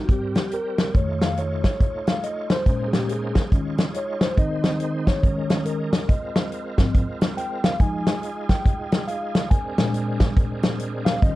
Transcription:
Already playing: tonewheel organ G3 C4 G4 A#4
0.04 tine electric piano F#4
0.09 tine electric piano G#2 G3 C4 G4, kick, closed hi-hat
0.35 snare, closed hi-hat
0.51 tine electric piano A#4, closed hi-hat
0.78 snare, closed hi-hat
0.94 tine electric piano F2 D#3 A3 C#5, tonewheel organ A3 D#4 F4 C#5, kick, closed hi-hat
1.21 tine electric piano F5, snare, closed hi-hat
1.37 tine electric piano C#5, closed hi-hat
1.64 tine electric piano C#5, kick, snare, closed hi-hat
1.80 kick, closed hi-hat
2.07 tine electric piano F5, snare, closed hi-hat
2.23 tine electric piano D#5, closed hi-hat
2.50 tine electric piano C5, snare, closed hi-hat
2.66 tine electric piano A#2 G#3 C#4, tonewheel organ A#3 C#4 G#4 C5, kick, closed hi-hat
2.88 tine electric piano G#4
2.93 tine electric piano G4, snare, closed hi-hat
3.09 tine electric piano G#4, closed hi-hat
3.35 kick, snare, closed hi-hat
3.52 tine electric piano D#3 G#3 C#4, tonewheel organ G#3 F4 C#5, kick, closed hi-hat
3.78 snare, closed hi-hat
3.94 tine electric piano C#5, closed hi-hat
4.21 tine electric piano C5, snare, closed hi-hat
4.37 tonewheel organ D#3 C4 C5, tine electric piano D#3 C4 D#4 D#5, kick, closed hi-hat
4.64 snare, closed hi-hat
4.80 closed hi-hat
5.07 tine electric piano C#5, kick, snare, closed hi-hat
5.22 tine electric piano D#3 G#3 C#4, tonewheel organ C#4 A#4, kick, closed hi-hat
5.50 snare, closed hi-hat
5.65 tine electric piano A#4, closed hi-hat
5.93 snare, closed hi-hat
6.08 tonewheel organ G#3 C4 F4, tine electric piano D#5, kick, closed hi-hat
6.36 snare, closed hi-hat
6.52 closed hi-hat
6.78 tine electric piano G#2 F3 C4, kick, snare, closed hi-hat
6.95 kick, closed hi-hat
7.21 snare, closed hi-hat
7.37 tine electric piano G5, closed hi-hat
7.64 tine electric piano F5, snare, closed hi-hat
7.79 tine electric piano F3 G#3 D#4 G#5, tonewheel organ G#3 D#4 F4 G#4, kick, closed hi-hat
8.07 snare, closed hi-hat
8.23 closed hi-hat
8.49 tine electric piano G5, kick, snare, closed hi-hat
8.66 kick, closed hi-hat
8.92 snare, closed hi-hat
9.08 tine electric piano F5, closed hi-hat
9.35 snare, closed hi-hat
9.51 tonewheel organ G#3 C4 D4 G#4 A#4, tine electric piano G#5, kick, closed hi-hat
9.78 tine electric piano A#2 G#3 D4, snare, closed hi-hat
9.94 closed hi-hat
10.20 kick, snare, closed hi-hat
10.37 kick, closed hi-hat
10.63 snare, closed hi-hat
10.79 closed hi-hat
11.05 tine electric piano F5, snare, closed hi-hat
11.22 tine electric piano D#3 G3 C#4 D#5, tonewheel organ G3 C#4 D#4 F4 C5, kick, closed hi-hat

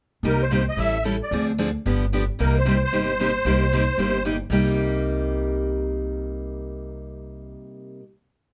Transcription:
0.23 upright bass C2, steel-string acoustic guitar C3 G3 A#3 D#4 G4, accordion A#4
0.42 accordion C5
0.51 steel-string acoustic guitar C3 G3 A#3 D#4 G4
0.69 accordion D#5
0.77 upright bass A1, steel-string acoustic guitar E3 G3 C#4 E4 A4, accordion E5
1.04 steel-string acoustic guitar E3 G3 C#4 E4 A4
1.23 accordion D5
1.31 upright bass D2, steel-string acoustic guitar D3 F3 C4 D4 G#4
1.58 steel-string acoustic guitar D3 F3 C4 D4 G#4
1.86 upright bass G1, steel-string acoustic guitar D3 F3 B3 D4 G4
2.13 steel-string acoustic guitar D3 F3 B3 D4 G4
2.39 upright bass C2, steel-string acoustic guitar C3 G3 A#3 D#4 G4, accordion A#4
2.58 accordion C5
2.65 steel-string acoustic guitar C3 G3 A#3 D#4 G4
2.84 accordion C5
2.92 upright bass G1, steel-string acoustic guitar C3 G3 A#3 D#4 G4
3.20 steel-string acoustic guitar C3 G3 A#3 D#4 G4
3.45 upright bass C2, steel-string acoustic guitar C3 G3 A#3 D#4 G4
3.72 steel-string acoustic guitar C3 G3 A#3 D#4 G4
3.98 upright bass G1, steel-string acoustic guitar C3 G3 A#3 D#4 G4
4.25 steel-string acoustic guitar C3 G3 A#3 D#4 G4
4.50 upright bass C2, steel-string acoustic guitar C3 G3 A#3 D#4 G4

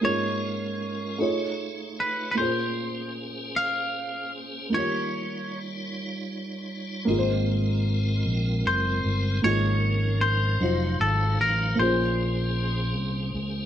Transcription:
0.01 upright piano G#2 A#3 C#4 F4 G#4 C#5, tonewheel organ G#3 C#4 F4 A#4, clean electric guitar C#5
1.18 upright piano A3 D#4 F4 G#4 C#5, tonewheel organ A3 D#4 F4 B4
1.26 tonewheel organ C#5
2.00 clean electric guitar B4
2.31 upright piano A#3, clean electric guitar B4
2.36 upright piano A#2 C#4 F4 G#4, tonewheel organ A#3 C#4 G#4 A#4, clean electric guitar C5
2.42 upright piano C5, tonewheel organ C5
3.56 clean electric guitar F5
4.70 tonewheel organ G3 D#4 F4 C5, upright piano A#3 D#4 F4
4.74 upright piano D#3 G4 C#5, clean electric guitar C#5
4.79 tonewheel organ C#5
7.05 fingered electric bass G#1, upright piano G#2 A#3 D#4 F4, tonewheel organ G#3 C4 F4 A#4
7.10 upright piano G#4 A#4
7.18 upright piano C5
8.26 fingered electric bass A#1
8.65 fingered electric bass F#1, clean electric guitar C5
9.04 fingered electric bass G1
9.42 fingered electric bass G#1, upright piano G#2 A#3 C#4 D#4 F4 G#4, tonewheel organ F3 C#4 D#4 A#4, clean electric guitar C#5
10.21 clean electric guitar C5
10.60 fingered electric bass F1, upright piano F#3 D#4 F4 F#4 C5, tonewheel organ F#3 D#4 C5 F5
11.00 fingered electric bass G#1, clean electric guitar A4
11.40 fingered electric bass A1, clean electric guitar A#4
11.75 fingered electric bass A#1, upright piano A#2 A#3 C#4
11.79 tonewheel organ A#3 C#4 G#4 C5, upright piano F4 G#4 C5, clean electric guitar C5
12.95 fingered electric bass C2
13.34 fingered electric bass C#2

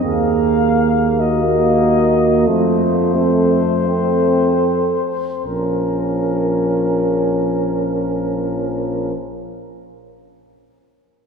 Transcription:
0.03 tuba D#2, trombone section A#3, euphonium A#3, french horn section G#4, flugelhorn F5
1.20 trombone section A#3, french horn section F#4, flugelhorn D#5
2.46 tuba F2, trombone section A3, euphonium A3, french horn section F4, flugelhorn C5
3.15 euphonium C4, french horn section A4
3.88 euphonium A3, trombone section C4, french horn section A4
5.45 tuba A#1, euphonium F3, trombone section C#4, flugelhorn A#4, french horn section A#4

